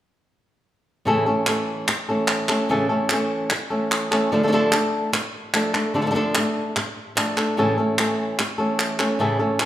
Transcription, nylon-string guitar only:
1.05 A2 C#3 E3 A3 C#4 A4
1.26 E3 A3 C#4 A4
1.46 E3 A3 C#4 A4
1.87 muted nylon-string guitar stroke
2.09 E3 A3 C#4 A4
2.49 E3 A3 C#4 A4
2.69 A2 C#3 E3 A3 C#4 A4
2.89 E3 A3 C#4 A4
3.10 E3 A3 C#4 A4
3.51 muted nylon-string guitar stroke
3.70 E3 A3 C#4 A4
4.11 E3 A3 C#4 A4
4.32 D3 F3 A3 D4 A4
4.43 F3 A3 D4 A4
4.48 F3 A3 D4 A4
4.52 D3 F3 A3 D4 A4
4.72 A3 D4 A4
5.13 muted nylon-string guitar stroke
5.54 F3 A3 D4 A4
5.74 A3 D4 A4
5.94 D3 F3 A3 D4 A4
6.01 F3 A3 D4 A4
6.06 F3 A3 D4 A4
6.11 D3 F3 A3 D4 A4
6.15 F3 A3 D4 A4
6.36 A3 D4 A4
6.76 muted nylon-string guitar stroke
7.15 F3 A3 D4 A4
7.37 A3 D4 A4
7.57 A2 C#3 E3 A3 C#4 A4
7.78 E3 A3 C#4 A4
7.99 E3 A3 C#4 A4
8.39 muted nylon-string guitar stroke
8.58 E3 A3 C#4 A4
8.99 E3 A3 C#4 A4
9.19 A2 C#3 E3 A3 C#4 A4
9.39 E3 A3 C#4 A4
9.59 E3 A3 C#4 A4

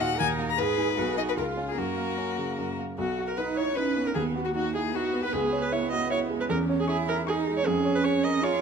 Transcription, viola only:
0.19 D#4
0.58 G#4
0.98 G#4
1.37 F4
1.77 A#3
2.99 F#4
3.28 A#4
3.37 B4
3.57 C#5
3.77 B4
4.07 A#4
4.15 G#4
4.46 F#4
4.55 F#4
4.75 G#4
4.94 F#4
5.23 B4
5.33 G#4
5.62 B4
5.72 C#5
5.91 D#5
6.11 C#5
6.41 B4
6.50 A#4
6.79 G#4
6.89 G#4
7.09 A#4
7.28 G#4
7.57 C#5
7.66 G#4
7.96 B4
8.05 C#5
8.24 D#5
8.43 C#5

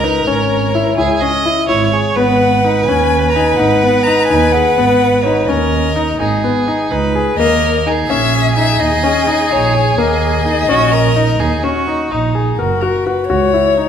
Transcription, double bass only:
Already playing: C#2
0.27 G#1
0.98 C#2
1.69 G#1
2.16 G#1
2.88 D#2
3.59 G#1
4.31 D#2
4.78 G#1
5.48 D#2
6.19 G#1
6.91 C#2
7.38 D#2
8.09 A#1
8.80 D#2
9.51 A#1
9.98 D#2
10.70 A#1
11.40 D#2
12.10 A#1
12.59 F#1
13.29 C#2

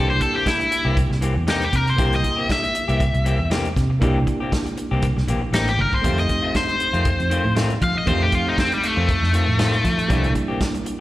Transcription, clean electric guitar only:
Already playing: E3 A#3 C4 G4
0.20 muted clean electric guitar stroke
0.34 A#3 C4 G4
0.45 muted clean electric guitar stroke
0.60 muted clean electric guitar stroke
0.71 muted clean electric guitar stroke
0.85 E3 A#3 C4 G4
1.10 muted clean electric guitar stroke
1.21 E3 A#3 C4 G4
1.35 muted clean electric guitar stroke
1.47 E3 A#3 C4 G4
1.72 muted clean electric guitar stroke
1.86 muted clean electric guitar stroke
1.98 E3 A#3 C4 G4
2.23 muted clean electric guitar stroke
2.36 A#3 C4 G4
2.49 muted clean electric guitar stroke
2.63 muted clean electric guitar stroke
2.74 muted clean electric guitar stroke
2.88 E3 A#3 C4 G4
3.14 muted clean electric guitar stroke
3.24 E3 A#3 C4 G4
3.39 muted clean electric guitar stroke
3.50 E3 A#3 C4 G4
3.76 muted clean electric guitar stroke
3.90 muted clean electric guitar stroke
4.01 E3 A#3 C4 G4
4.27 muted clean electric guitar stroke
4.40 A#3 C4 G4
4.52 muted clean electric guitar stroke
4.66 muted clean electric guitar stroke
4.77 muted clean electric guitar stroke
4.91 E3 A#3 C4 G4
5.17 muted clean electric guitar stroke
5.28 E3 A#3 C4 G4
5.42 muted clean electric guitar stroke
5.53 E3 A#3 C4 G4
5.78 muted clean electric guitar stroke
5.92 muted clean electric guitar stroke
6.03 D#3 A3 C4 F4
6.29 muted clean electric guitar stroke
6.42 A3 C4 F4
6.54 muted clean electric guitar stroke
6.68 muted clean electric guitar stroke
6.80 muted clean electric guitar stroke
6.93 D#3 A3 C4 F4
7.19 muted clean electric guitar stroke
7.30 D#3 A3 C4 F4
7.45 muted clean electric guitar stroke
7.55 D#3 A3 C4 F4
7.81 muted clean electric guitar stroke
7.95 muted clean electric guitar stroke
8.07 D#3 A3 C4 F4
8.32 muted clean electric guitar stroke
8.46 A3 C4 F4
8.71 muted clean electric guitar stroke
8.83 muted clean electric guitar stroke
8.96 D#3 A3 C4 F4
9.22 muted clean electric guitar stroke
9.33 D#3 A3 C4 F4
9.47 muted clean electric guitar stroke
9.58 D#3 A3 C4 F4
9.83 muted clean electric guitar stroke
9.97 muted clean electric guitar stroke
10.09 E3 A#3 C4 G4
10.35 muted clean electric guitar stroke
10.48 A#3 C4 G4
10.60 muted clean electric guitar stroke
10.75 muted clean electric guitar stroke
10.85 muted clean electric guitar stroke

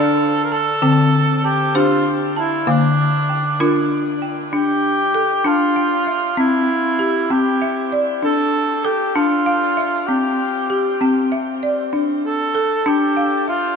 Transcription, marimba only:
Already playing: D4 A4 D5 F5
0.52 A5
0.82 D3 C4 G5
1.44 A5
1.75 D4 G4 C5
2.36 A5
2.67 D3 A#3 F5
3.29 G5
3.60 D4 F4 A#4
4.22 G5
4.53 D4
5.14 A4
5.44 D4 A5
5.76 F5
6.07 E5
6.37 C4
6.99 G4
7.30 C4 G5
7.62 E5
7.92 D5
8.23 D4
8.85 A4
9.15 D4 A5
9.46 F5
9.77 E5
10.09 C4
10.70 G4
11.01 C4 G5
11.32 E5
11.63 D5
11.93 D4
12.55 A4
12.86 D4 A5
13.17 F5
13.48 E5

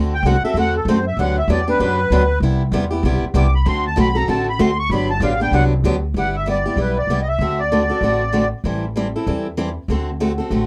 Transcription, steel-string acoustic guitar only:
Already playing: D3 A3 C4 F#4 A4
0.25 D3 A3 C4 F#4 A4
0.45 C4 F#4 A4
0.56 D3 A3 C4 F#4 A4
0.88 D3 A3 C4 F#4 A4
1.19 D3 F#3 B3 D4 G4
1.49 D3 F#3 B3 D4 G4
1.68 B3 D4 G4
1.80 D3 F#3 B3 D4 G4
2.12 D3 F#3 B3 D4 G4
2.42 C3 G3 B3 E4 G4
2.73 C3 G3 B3 E4 G4
2.91 B3 E4 G4
3.05 C3 G3 B3 E4 G4
3.34 C3 G3 B3 E4 G4
3.66 D3 A3 C4 F#4 A4
3.96 D3 A3 C4 F#4 A4
4.15 C4 F#4 A4
4.28 D3 A3 C4 F#4 A4
4.59 D3 A3 C4 F#4 A4
4.91 D3 F#3 B3 D4 G4
5.21 D3 F#3 B3 D4 G4
5.40 B3 D4 G4
5.53 D3 F#3 B3 D4 G4
5.85 D3 F#3 B3 D4 G4
6.16 G3 B3 E4 G4
6.46 G3 B3 E4 G4
6.66 B3 E4 G4
6.77 G3 B3 E4 G4
7.10 G3 B3 E4 G4
7.41 D3 A3 C4 F#4 A4
7.72 D3 A3 C4 F#4 A4
7.90 C4 F#4 A4
8.03 D3 A3 C4 F#4 A4
8.33 D3 A3 C4 F#4 A4
8.65 E3 G3 C4 E4 A4
8.96 E3 G3 C4 E4 A4
9.16 C4 E4 A4
9.27 E3 G3 C4 E4 A4
9.57 E3 G3 C4 E4 A4
9.89 D3 A3 C4 F#4 A4
10.20 D3 A3 C4 F#4 A4
10.38 C4 F#4 A4
10.51 D3 A3 C4 F#4 A4

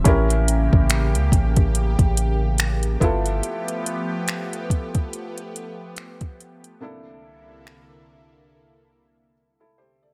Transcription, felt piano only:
0.04 C#4 E4 G4 A#4
3.00 B3 E4 F4 A4
6.80 C3 A#3 D4 E4 A4
9.60 E4 A4
9.78 G4 C5
10.03 A4 D5

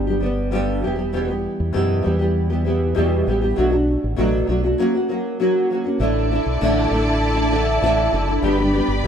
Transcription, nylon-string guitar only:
0.07 G3 B3 D4 G4
0.20 G3 B3 D4 G4
0.51 G2 D3 G3 B3 D4 G4
0.82 E3 G3 B3 G4
0.95 E3 G3 B3 G4
1.13 E2 B2 E3 G3 B3 G4
1.28 E3 G3 B3 G4
1.73 E2 B2 E3 B3 G4
2.02 E3 G3 B3 G4
2.19 E3 G3 B3 G4
2.50 E3 G3 B3 G4
2.65 E3 G3 B3 G4
2.94 E2 B2 E3 G3 B3 G4
3.26 E3 G3 B3 G4
3.41 E3 G3 B3 G4
3.56 B2 F#3 A3 D4 F#4
3.71 A3 D4 F#4
4.16 B2 F#3 A3 D4 F#4
4.47 F#3 A3 D4 F#4
4.64 A3 D4 F#4
4.78 F#3 A#3 C#4 F#4
4.95 A#3 C#4 F#4
5.09 F#3 A#3 C#4 F#4
5.40 F#3 A#3 C#4 F#4
5.70 F#3 A#3 C#4 F#4
5.84 A#3 C#4 F#4
6.00 A2 D3 A3 D4 E4
6.30 D3 A3 D4 E4
6.61 A2 D3 A3 D4 E4
6.90 D3 A3 D4 E4
7.34 A3 D4 E4
7.51 D3 A3 D4 E4
7.82 A2 D3 A3 D4 E4
8.12 D3 A3 D4 E4
8.27 A3 D4 E4
8.42 G2 D3 G3 B3 D4 G4
8.59 G3 B3 D4 G4
8.74 G3 B3 D4 G4

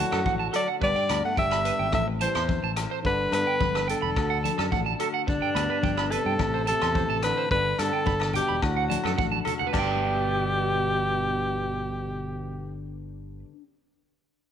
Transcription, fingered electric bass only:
0.12 F#2
0.26 A1
0.82 G1
1.10 D2
1.37 G1
1.79 G#1
1.93 A1
2.35 E2
2.63 A1
3.04 G1
3.32 G2
3.60 G1
4.03 E1
4.17 D2
4.58 F#2
4.72 A1
5.28 G1
5.55 D2
5.83 G1
6.25 G2
6.39 A1
6.82 E2
7.09 A1
7.51 G1
7.79 G2
8.07 G1
8.50 E1
8.63 D2
9.04 F#2
9.18 A1
9.74 G1

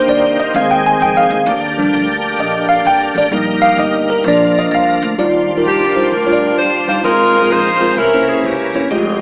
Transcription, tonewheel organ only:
Already playing: D#3 A#3 C4 G4
0.56 D#3 G#3 C4 G#4
1.48 D3 A#3 D4 G4
3.33 G3 A#3 D#4 A#4
4.23 F3 A#3 D4 A#4
5.18 F3 F#3 D4 F4
5.24 G3
7.04 F3 A#3 C4 G#4
7.97 C3 E3 C#4 A#4
8.90 F3 G3 D#4 G5
8.96 G#3

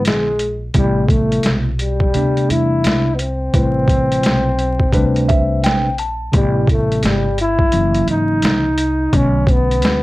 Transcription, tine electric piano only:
Already playing: D3 F3 G#3 B3 E4
0.75 C3 G3 A3 B3 E4
2.14 C3 G3 A3 B3 D4
3.53 C3 G3 A3 E4 B4
4.93 C3 G3 A3 D4 B4
5.29 E5
5.64 G5
5.99 A5
6.32 C3 G3 A3 B3 E4
7.72 C#3 E3 F#3 A#3 C#4
9.13 D3 F#3 A3 B3 C#4

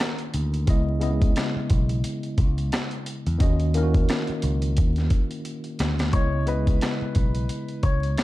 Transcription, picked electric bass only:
0.34 D2
0.68 C#2
1.56 muted picked electric bass stroke
1.71 B1
2.38 C#2
3.27 E2
3.41 D#2
4.29 muted picked electric bass stroke
4.44 C#2
4.78 D#2
5.80 D2
6.14 C#2
7.02 muted picked electric bass stroke
7.16 B1
7.84 C#2

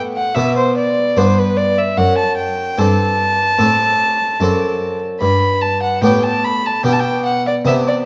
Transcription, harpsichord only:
Already playing: A2 B3 D4 B4
0.35 B2 B3 D4 B4
1.17 G2 B3 D4 B4
1.98 F#2
2.78 G2 C4 D4 A4
3.58 A2 C4 D4 A4
4.40 F#2 C4 D4 A4
5.21 G2
6.02 A2 B3 D4 G4
6.83 B2 B3 D4 G4
7.65 C3 B3 D4 G4

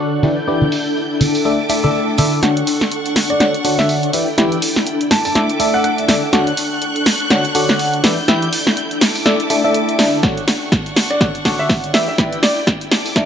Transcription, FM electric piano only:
Already playing: D3 D4 F#4 A4 C#5 D5
0.23 E3 D4 E4 G4 B4 D5
0.48 E3 D4 E4 G4 B4 D5
1.45 A3 D4 E4 A4 D5 E5
1.70 A3 D4 E4 A4 D5 E5
1.84 A3 D4 E4 A4 D5 E5
2.18 D3 D4 E4 A4 D5 E5
2.43 D3 F#4 A4 C#5 D5 F#5
3.40 D3 F#4 A4 C#5 D5 F#5
3.65 D3 F#4 A4 C#5 D5 F#5
4.13 E3 E4 G4 B4 D5 E5
4.38 E3 E4 G4 B4 D5 E5
5.35 A3 D4 E4 A4 D5 E5
5.60 A3 D4 E4 A4 D5 E5
6.08 D3 D4 E4 A4 D5 E5
6.33 D3 F#4 A4 C#5 D5 F#5
7.30 D3 F#4 A4 C#5 D5 F#5
7.55 D3 F#4 A4 C#5 D5 F#5
8.04 E3 E4 G4 B4 D5 E5
8.28 E3 E4 G4 B4 D5 E5
9.26 A3 D4 E4 A4 D5 E5
9.50 A3 D4 E4 A4 D5 E5
9.64 A3 D4 E4 A4 D5 E5
9.99 D3 D4 E4 A4 D5 E5
10.23 D3 F#4 A4 C#5 D5 F#5
11.21 D3 F#4 A4 C#5 D5 F#5
11.45 D3 F#4 A4 C#5 D5 F#5
11.94 E3 E4 G4 B4 D5 E5
12.18 E3 E4 G4 B4 D5 E5
13.16 A3 D4 E4 A4 D5 E5

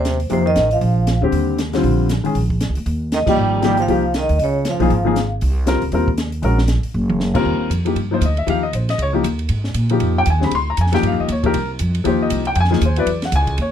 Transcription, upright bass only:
Already playing: D#2
0.30 F2
0.56 A1
0.81 A#1
1.22 D2
1.32 D#2
1.83 A#1
2.24 muted upright bass stroke
2.35 A#1
2.69 C#2
2.77 D2
2.86 D#2
3.27 D#2
3.37 G#1
3.88 C2
4.29 D2
4.39 C#2
4.80 B1
4.90 G#1
5.42 C2
5.82 C#2
5.92 D#2
6.43 A#1
6.84 muted upright bass stroke
6.94 F#1
7.35 C#2
7.45 D#2
7.60 muted upright bass stroke
7.70 F2
7.95 G2
8.21 D2
8.47 D#2
8.73 A#1
8.98 C#2
9.24 D#2
9.49 G#2
9.74 A#2
10.00 F2
10.26 D#2
10.51 D2
10.77 F2
11.03 G2
11.12 F2
11.20 D#2
11.28 D#2
11.54 C2
11.80 F2
12.05 D#2
12.30 C2
12.56 F2
12.81 D#2
13.06 E2
13.32 C#2
13.58 D#2

